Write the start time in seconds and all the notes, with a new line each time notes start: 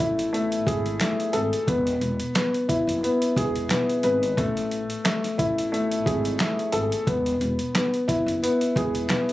Already playing: A3
0.00 A1 E4, closed hi-hat
0.19 closed hi-hat
0.33 A3, closed hi-hat
0.52 closed hi-hat
0.67 G#1 G#4, kick, closed hi-hat
0.86 closed hi-hat
1.00 A3, finger snap, snare, closed hi-hat
1.20 closed hi-hat
1.33 G#1 A4, closed hi-hat
1.53 closed hi-hat
1.68 E1 B3, kick, closed hi-hat
1.87 closed hi-hat
2.01 E1, closed hi-hat
2.20 closed hi-hat
2.35 B3, finger snap, snare, closed hi-hat
2.54 closed hi-hat
2.68 E4, kick, closed hi-hat
2.87 F#1, closed hi-hat
3.03 B3, closed hi-hat
3.22 closed hi-hat
3.36 E1 G#4, kick, closed hi-hat
3.56 closed hi-hat
3.69 B3, finger snap, snare, closed hi-hat
3.89 closed hi-hat
4.03 G#1 B4, closed hi-hat
4.23 closed hi-hat
4.37 A1 A3, kick, closed hi-hat
4.57 closed hi-hat
4.71 closed hi-hat
4.90 closed hi-hat
5.05 A3, finger snap, snare, closed hi-hat
5.24 snare, closed hi-hat
5.38 A1 E4, kick, closed hi-hat
5.58 closed hi-hat
5.72 A3, closed hi-hat
5.92 closed hi-hat
6.06 G#1 G#4, kick, closed hi-hat
6.25 closed hi-hat
6.39 A3, finger snap, snare, closed hi-hat
6.59 closed hi-hat
6.72 G#1 A4, closed hi-hat
6.92 closed hi-hat
7.07 E1 B3, kick, closed hi-hat
7.26 closed hi-hat
7.41 E1, closed hi-hat
7.59 closed hi-hat
7.75 B3, finger snap, snare, closed hi-hat
7.94 closed hi-hat
8.08 E4, kick, snare, closed hi-hat
8.26 F#1, closed hi-hat
8.43 B3, closed hi-hat
8.61 closed hi-hat
8.76 E1 G#4, kick, closed hi-hat
8.95 closed hi-hat
9.09 B3, finger snap, snare, closed hi-hat
9.29 closed hi-hat